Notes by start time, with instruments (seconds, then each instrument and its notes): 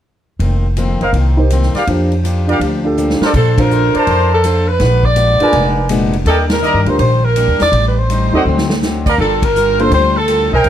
0.39 upright bass F1, steel-string acoustic guitar F2 D#3 A#3 C4, ride
0.77 steel-string acoustic guitar F2 D#3 A#3 C4, hi-hat pedal, ride
1.01 upright bass F#1, trumpet section A#4 C5 D#5 F5, ride
1.13 upright bass C2, steel-string acoustic guitar F2 D#3 A#3 C4, ride
1.37 grand piano D#4 G4 A#4 C5
1.50 steel-string acoustic guitar F2 D#3 A#3 C4, hi-hat pedal, ride
1.62 snare
1.75 trumpet section G4 A#4 D5 F5, muted upright bass stroke, snare, ride
1.87 upright bass F2, steel-string acoustic guitar F3 A#3 D4 G4, grand piano D4 F4 G4 C5, ride
2.12 ride
2.24 steel-string acoustic guitar F3 A#3 D4 G4, hi-hat pedal, ride
2.47 grand piano D4 F4 G4 D5, trumpet section G4 A#4 D5 F5, ride
2.60 upright bass D2, steel-string acoustic guitar F3 A#3 D4 G4, ride
2.84 grand piano D4 F4 G4 A4
2.97 steel-string acoustic guitar F3 A#3 D4 G4, hi-hat pedal
3.10 snare
3.20 trumpet section A4 A#4 C5 D5, muted upright bass stroke, snare
3.34 upright bass A#1, steel-string acoustic guitar A#3 D4 A4 C5, saxophone section A4, kick, crash
3.58 grand piano D4 F4 A#4 C5, saxophone section A#4, kick, ride
3.71 steel-string acoustic guitar A#3 D4 A4 C5, hi-hat pedal
3.94 trumpet section A#4 C5 D5 A5, saxophone section C5, muted upright bass stroke, ride
4.07 upright bass F2, steel-string acoustic guitar A#3 D4 A4 C5, saxophone section C5, ride
4.33 saxophone section A4
4.44 steel-string acoustic guitar A#3 D4 A4 C5, hi-hat pedal, ride
4.68 saxophone section B4
4.79 upright bass A#1, steel-string acoustic guitar A#2 G#3 B3 D4, snare, ride
5.03 saxophone section D5, kick
5.15 steel-string acoustic guitar A#2 G#3 B3 D4, hi-hat pedal, ride
5.40 grand piano D4 F4 G#4 B4, trumpet section A#4 B4 D5 G#5, muted upright bass stroke, ride
5.52 upright bass F1, steel-string acoustic guitar A#2 G#3 B3 D4, ride
5.89 steel-string acoustic guitar A#2 G#3 B3 D4, hi-hat pedal, ride
6.13 ride
6.25 upright bass D#2, steel-string acoustic guitar D#3 G3 A#3 D4, saxophone section A4, trumpet section A#4 D5 D#5 G5, ride
6.49 saxophone section A#4, snare, ride
6.62 steel-string acoustic guitar D#3 G3 A#3 D4, trumpet section A#4 D5 D#5 A#5, hi-hat pedal
6.74 upright bass G2
6.86 upright bass D2, grand piano D4 F4 G4 A#4, saxophone section C5, ride
6.99 upright bass A#1, steel-string acoustic guitar D#3 G3 A#3 D4, saxophone section C5, ride
7.24 saxophone section A#4
7.36 steel-string acoustic guitar D#3 G3 A#3 D4, hi-hat pedal, ride
7.48 upright bass D#2
7.60 upright bass E2, saxophone section D5, snare, ride
7.72 upright bass A1, steel-string acoustic guitar A2 G3 C4 D#4, ride
7.88 saxophone section B4
7.98 saxophone section C5
8.10 steel-string acoustic guitar A2 G3 C4 D#4, hi-hat pedal, ride
8.33 upright bass D#2, grand piano C4 D#4 F#4 A4, trumpet section C5 D5 D#5 F#5
8.45 upright bass D2, steel-string acoustic guitar D3 F#3 C4
8.50 steel-string acoustic guitar D#4
8.58 snare
8.70 snare
8.82 steel-string acoustic guitar D3 F#3 C4 D#4, snare, hi-hat pedal
9.06 trumpet section A#4 D5 F5 A#5, kick, crash
9.18 upright bass G1, steel-string acoustic guitar G3 D4 F4 A#4, saxophone section A4
9.42 saxophone section A#4, kick, ride
9.56 steel-string acoustic guitar G3 D4 F4 A#4, hi-hat pedal
9.79 grand piano A#3 D4 F4 A4, saxophone section C5, ride
9.91 upright bass D2, steel-string acoustic guitar G3 D4 F4 A#4, saxophone section C5, ride
10.17 saxophone section A4
10.28 steel-string acoustic guitar G3 D4 F4 A#4, hi-hat pedal, ride
10.52 upright bass B1, trumpet section A#4 C5 D#5 G5, saxophone section A#4
10.64 upright bass C2, steel-string acoustic guitar C3 A#3, ride